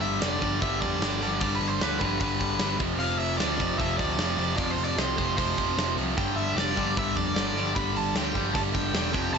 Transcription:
Already playing: G2 D3 G3
0.01 G1 E5, open hi-hat
0.21 F1 G2 D3 G3 D5, snare, open hi-hat
0.41 G1 G2 D3 G3, kick, open hi-hat
0.61 G1 G2 D3 G3 E5, kick, open hi-hat
0.80 F2 D5, kick, open hi-hat
1.01 G1 G2 D3 G3, snare, open hi-hat
1.21 G1 G2 D3 G3, open hi-hat
1.41 G1 G2 D3 G3 D5, kick, open hi-hat
1.55 B4
1.61 G1, open hi-hat
1.68 C5
1.81 D2 G2 D3 G3 B4, snare, open hi-hat
1.99 G1 G2 D3 G3 B4, kick, open hi-hat
2.20 G1 G2 D3 G3 B4, kick, open hi-hat
2.40 G1, kick, open hi-hat
2.59 G1 G2 D3 G3, snare, open hi-hat
2.79 F1 F2 C3 F3, kick, open hi-hat
2.99 F1 F2 C3 F3 F5, open hi-hat
3.19 F1 E5, open hi-hat
3.38 D2 F2 C3 F3 D5, snare, open hi-hat
3.57 F1 F2 C3 F3, kick, open hi-hat
3.77 F1 F2 C3 F3 E5, kick, open hi-hat
3.97 D2 D5, kick, open hi-hat
4.17 F1 F2 C3 F3, snare, open hi-hat
4.37 F1 F2 C3 F3, open hi-hat
4.56 F1 F2 C3 F3 D5, kick, open hi-hat
4.72 C5
4.78 F1, open hi-hat
4.84 D5
4.95 C2 F2 C3 F3 C5, snare, open hi-hat
5.17 F1 F2 C3 F3 C5, kick, open hi-hat
5.36 F1 F2 C3 F3 C5, kick, open hi-hat
5.57 F1, kick, open hi-hat
5.77 F1 F2 C3 F3, snare, open hi-hat
5.96 C2 F2 C3 F3, open hi-hat
6.16 G1 G2 D3 G3 G5, kick, open hi-hat
6.36 G1 E5, open hi-hat
6.55 F1 G2 D3 G3 D5, snare, open hi-hat
6.76 G1 G2 D3 G3, kick, open hi-hat
6.96 G1 G2 D3 G3 E5, kick, open hi-hat
7.16 F2 D5, kick, open hi-hat
7.34 G1 G2 D3 G3, snare, open hi-hat
7.53 G1 G2 D3 G3, open hi-hat
7.75 G1 G2 D3 G3 B5, kick, open hi-hat
7.94 G1 A5, open hi-hat
8.12 D2 G5, snare, open hi-hat
8.16 G2 D3 G3
8.35 G1 G2 D3 G3, kick, open hi-hat
8.54 G1 G2 D3 G3 A5, kick, open hi-hat
8.74 G1 G5, kick, open hi-hat
8.93 E1 G2 D3 G3, snare, open hi-hat
9.13 F1 F2 C3 F3, kick, open hi-hat
9.32 F1 F2 C3 F3 A5, open hi-hat

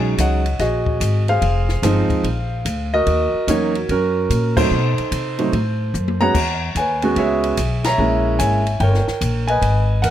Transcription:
Already playing: B1 F#3 G#3 C#4 D#4 C#5 D#5 G#5
0.18 C#2 C#5 D#5 F#5, kick, hi-hat pedal, ride
0.46 ride
0.59 A#1 F#4 G#4 D#5, kick, snare, ride
0.86 kick
1.00 G#1, kick, hi-hat pedal, ride
1.28 G#4 C5 F5, ride
1.42 F1, kick, ride
1.69 snare
1.82 G1 F3 G#3 C4 D#4, kick, snare, hi-hat pedal, ride
2.09 muted upright bass stroke, kick, ride
2.23 A#1, kick, ride
2.65 D2, kick, hi-hat pedal, ride
2.94 F#4 A#4 D#5
3.06 D#2, kick, ride
3.34 muted upright bass stroke
3.47 E2 F#3 A#3 C#4 D#4 F#4 A#4 C#5, kick, hi-hat pedal, ride
3.75 ride
3.89 F#2 C#4 F#4 A#4, kick, ride
4.30 A#2, kick, hi-hat pedal, ride
4.57 F#3 A3 C4 D#4 A4 C5, kick, crash
4.71 B2
4.98 muted upright bass stroke, ride
5.11 C3, kick, hi-hat pedal, ride
5.38 F#3 A3 C4 D#4, ride
5.52 A2, kick, ride
5.94 F#2, hi-hat pedal
6.08 high tom
6.21 G#3 B3 C#4 F#4 C#5 F#5 A#5, high tom
6.34 E2, kick, crash
6.75 D#2 B4 C#5 G#5, kick, hi-hat pedal, ride
7.02 G#3 B3 C#4 F#4, ride
7.16 C#2 G#4 C#5 E5, kick, ride
7.44 ride
7.57 B1, kick, hi-hat pedal, ride
7.84 C#5 E5 A#5, snare, ride
7.98 A#1 G#3 A#3 C#4 E4
8.39 G#1 C#5 E5 G#5, kick, hi-hat pedal, ride
8.67 ride
8.80 G1 A#4 C#5 G5, kick, ride
8.94 snare
9.08 muted upright bass stroke, snare
9.21 A#1, kick, hi-hat pedal, ride
9.47 B4 D#5 G#5, ride
9.62 G#1, kick, ride
10.02 D#2 A#4 B4 F#5, kick, hi-hat pedal, ride

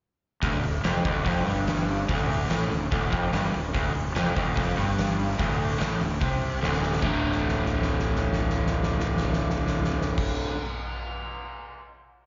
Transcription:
0.42 D1 D2, kick, open hi-hat
0.64 D1 D2, open hi-hat
0.84 F1 F2, snare, open hi-hat
1.05 D1 D2, kick, open hi-hat
1.25 F1 F2, kick, open hi-hat
1.46 G1 G2, open hi-hat
1.67 snare, open hi-hat
1.89 open hi-hat
2.09 D1 D2, kick, open hi-hat
2.30 open hi-hat
2.50 A1 A2, snare, open hi-hat
2.70 D1 D2, open hi-hat
2.92 D1 D2, kick, open hi-hat
3.11 F1 F2, kick, open hi-hat
3.33 G1 G2, snare, open hi-hat
3.54 D1 D2, open hi-hat
3.74 D1 D2, kick, open hi-hat
3.94 D1 D2, open hi-hat
4.16 F1 F2, snare, open hi-hat
4.36 D1 D2, kick, open hi-hat
4.57 F1 F2, kick, open hi-hat
4.77 G1 G2, open hi-hat
4.99 snare, open hi-hat
5.20 open hi-hat
5.30 snare
5.38 D1 D2, kick, open hi-hat
5.60 open hi-hat
5.80 A1 A2, snare, open hi-hat
6.01 D1 D2, open hi-hat
6.21 C2 C3, kick, open hi-hat
6.42 open hi-hat
6.62 D1 D2, snare
6.73 snare
6.83 snare
6.93 snare
7.01 D1 D2 A2 D3, kick, crash
7.23 floor tom
7.32 snare
7.40 floor tom
7.48 snare
7.56 floor tom
7.65 snare
7.73 floor tom
7.82 snare
7.90 floor tom
7.99 snare
8.07 floor tom
8.16 snare
8.23 floor tom
8.33 snare
8.40 floor tom
8.50 snare
8.57 floor tom
8.66 snare
8.74 floor tom
8.83 snare
8.91 floor tom
9.00 snare
9.07 floor tom
9.17 snare
9.25 floor tom
9.33 snare
9.41 floor tom
9.50 snare
9.58 floor tom
9.67 snare
9.75 floor tom
9.84 snare
9.92 floor tom
10.01 snare
10.18 kick, crash

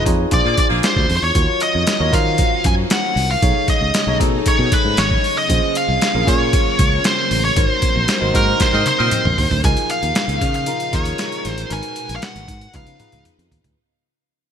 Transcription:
Already playing: D#4 F4 G#4 B4
0.05 F2 D#4 F4 G#4 C#5, kick, closed hi-hat
0.31 A#1 D4 F4 G#4 C5 D5, kick, closed hi-hat
0.45 A#2 A#3 G#4 D5
0.57 D5, kick, closed hi-hat
0.70 A#1 A#3 G#4 D5
0.83 C5, snare, closed hi-hat
0.96 D2, kick
1.10 F2, open hi-hat
1.17 C5
1.23 E2 C#5
1.35 D#2 D#3 C#4 D#4 F4 F#4 A#4 C#5, kick, closed hi-hat
1.60 D#5, closed hi-hat
1.75 F2
1.87 snare, closed hi-hat
1.99 D#2 F4 F#4 A#4 C#5
2.12 D#3 F4 F#4 A#4 C5 F5, kick, closed hi-hat
2.38 kick, closed hi-hat
2.64 F#2 G#5, kick, closed hi-hat
2.90 F#5, snare, closed hi-hat
3.16 C2, open hi-hat
3.31 F5
3.42 B1 C#3 F#3 A3 D#4 G#4 A4 C#5, kick, closed hi-hat
3.68 D#5, kick, closed hi-hat
3.81 C#2
3.94 snare, closed hi-hat
4.07 B1 D#4 G#4 A4 C#5
4.20 B2 D#4 G#4 A4 D#5, kick, closed hi-hat
4.46 C#5, muted fretless electric bass stroke, kick, closed hi-hat
4.59 B2
4.72 B4, kick, closed hi-hat
4.85 G#2
4.97 G#1 C#5, snare, closed hi-hat
5.11 kick
5.24 open hi-hat
5.38 D#5
5.48 A#1 C#3 A#3 C#4 F4 G#4 C5, kick, closed hi-hat
5.75 F5, closed hi-hat
5.88 C2
6.01 snare, closed hi-hat
6.14 A#1 C#4 F4 G#4 A#4
6.26 A#2 C#4 F4 G#4 C#5, kick, closed hi-hat
6.53 kick, closed hi-hat
6.79 C#2, kick, closed hi-hat
7.04 C5, snare, closed hi-hat
7.31 A1, open hi-hat
7.45 C#5
7.56 G#1 C3 D#4 F#4 A#4 C5 C#5, kick, closed hi-hat
7.69 C5
7.82 kick, closed hi-hat
7.96 A#1
8.08 snare, closed hi-hat
8.21 G#1 D#4 F#4 A#4 C5
8.34 G#2 D#4 F#4 A#4 C5, kick, closed hi-hat
8.60 C5, muted fretless electric bass stroke, kick, snare, closed hi-hat
8.73 G#2 C4 A#4 D#5
8.86 C5, closed hi-hat, high tom
8.99 A#2 C4 A#4 D#5
9.11 closed hi-hat, mid tom
9.25 A#1, mid tom
9.38 D#2, floor tom, open hi-hat
9.51 D2, floor tom
9.64 C#2 A#2 C#3 F3 D#4 F4 G#4 A#4 G#5, kick, closed hi-hat
9.77 closed hi-hat
9.90 F5, closed hi-hat
10.03 D#2, closed hi-hat
10.15 snare, closed hi-hat
10.28 C#2, closed hi-hat
10.41 C#3, kick, closed hi-hat
10.54 F5, closed hi-hat
10.66 D#4 F4 G#4 A#4, closed hi-hat
10.80 closed hi-hat
10.92 D#2 D#4 F4 G#4 A#4 C#5, kick, closed hi-hat
11.05 closed hi-hat
11.18 snare, closed hi-hat
11.32 closed hi-hat
11.45 A1, snare, closed hi-hat
11.49 C5
11.58 closed hi-hat
11.70 G#1 B2 G#3 D#4 F#4 A#4 B4 G#5, closed hi-hat
11.83 closed hi-hat
11.96 closed hi-hat
12.09 A#1, closed hi-hat
12.16 F5
12.22 F#5, snare, closed hi-hat
12.36 G#1, closed hi-hat
12.48 G#2, kick, closed hi-hat
12.61 closed hi-hat
12.73 C#2 C#3 F3 B3 D#4 F4 G#4 B4 F5, kick, closed hi-hat, high tom
12.87 C#3, closed hi-hat, high tom
12.99 D#4 F4 G#4 B4, closed hi-hat, mid tom
13.12 C#2, closed hi-hat, mid tom
13.25 closed hi-hat, mid tom
13.39 F2, closed hi-hat
13.51 D#2, closed hi-hat, floor tom
13.64 D2, closed hi-hat, floor tom

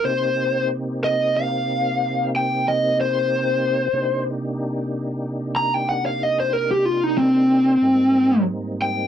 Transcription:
0.02 C3 A#3 C4 D#4 G4 C5
1.04 D#5
1.37 F5
2.36 G5
2.68 D#5
3.01 C5
3.93 C3 A#3 D4 D#4 G4
5.56 A#5
5.74 G5
5.89 F#5
6.06 F5
6.23 D#5
6.40 C5
6.53 A#4
6.71 G4
6.85 F4
7.04 D#4
7.18 C4
7.82 G#2 G3 A#3 C4 D#4
8.82 G5

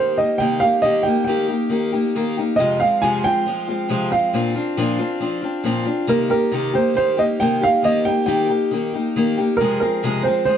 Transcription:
Already playing: D#3 A#3 D#4 C5
0.00 G4
0.17 A#3 D#4 G4 D#5
0.38 C3 D#3 A#3 D#4 G4 G5
0.60 A#3 D#4 G4 F5
0.82 D#3 A#3 D#4 G4 D#5
1.03 D#4 G4 G5
1.08 A#3
1.24 D#3 A#3 G5
1.29 D#4 G4
1.48 A#3 D#4 G4
1.70 D#3 A#3 D#4 G4
1.92 A#3 D#4 G4
2.15 D#3 A#3 D#4 G4
2.37 A#3 D#4 G4
2.56 F2 C3 F3 G#3 D#5
2.60 C4 F4
2.80 F3 G#3 C4 F4 F5
3.02 F2 C3 F3 G#3 C4 F4 G#5
3.24 F3 G#3 C4 F4 G5
3.46 F3 G#3 C4 F4
3.67 F3 G#3 C4 F4
3.89 F2 C3 F3 G#3 C4 F4
4.11 F3 G#3 C4 F4 F5
4.33 A#2 F3 C4 D4 F4
4.56 C4 D4 F4
4.77 A#2 F3 C4 D4 F4
4.99 C4 D4 F4
5.20 F3 C4 D4 F4
5.42 C4 D4 F4
5.64 A#2 F3 C4 D4 F4
5.85 C4 D4 F4
6.07 C3 D#3 A#3 D#4 G4 A#4
6.30 A#3 D#4 G4 A#4
6.52 C3 D#3 A#3 D#4 G4
6.74 A#3 D#4 G4 C5
6.94 D#3 A#3 D#4 G4 C5
7.17 A#3 D#4 G4 D#5
7.40 C3 D#3 A#3 D#4 G4 G5
7.61 A#3 D#4 G4 F5
7.83 D#3 A#3 D#4 G4 D#5
8.05 A#3 D#4 G4 G5
8.26 D#3 A#3 D#4 G4 G5
8.49 A#3 D#4 G4
8.71 D#3 A#3 D#4 G4
8.93 A#3 D#4 G4
9.16 D#3 A#3 D#4 G4
9.37 A#3 D#4 G4
9.57 F2 C3 F3 A#4
9.61 G#3 C4 G#4
9.80 G#3 C4 G#4 A#4
9.84 F3
10.03 F2 C3 F3 G#3 C4 G#4
10.23 G#3 C4 G#4 C5
10.28 F3
10.45 F3 G#3 C4 G#4 C5

